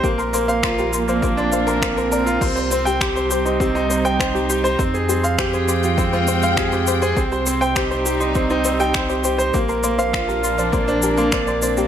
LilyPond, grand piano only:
\new Staff \with { instrumentName = "Grand piano" } { \time 4/4 \key c \minor \tempo 4 = 101 bes16 bes'16 bes16 f''16 f'16 bes'16 f'16 bes16 bes16 d'16 f''16 bes'16 bes16 bes'16 bes'16 f'16 | c'16 c''16 c'16 g''16 g'16 c''16 g'16 ees'16 c'16 ees'16 c'16 g''16 c''16 g'16 g'16 c''16 | c'16 aes'16 c'16 f''16 g'16 aes'16 g'16 f'16 c'16 f'16 c'16 f''16 aes'16 g'16 g'16 aes'16 | c'16 c''16 c'16 g''16 g'16 c''16 g'16 ees'16 c'16 ees'16 c'16 g''16 c''16 g'16 g'16 c''16 |
bes16 bes'16 bes16 f''16 f'16 bes'16 f'16 d'16 bes16 d'16 bes'16 bes16 d'16 d''16 d'16 bes16 | }